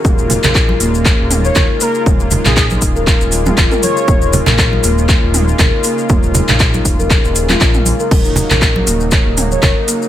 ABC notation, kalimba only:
X:1
M:4/4
L:1/16
Q:"Swing 16ths" 1/4=119
K:Bbphr
V:1 name="Kalimba"
z E z B z2 B, z d z E z B z B, z | d z E z2 E z B z D z F z B z A | z E z B z2 B, z3 E z B z B, z | d z E z2 E z B z D z F z e z B |
z E z B z2 B, z d B, E z B z B, z |]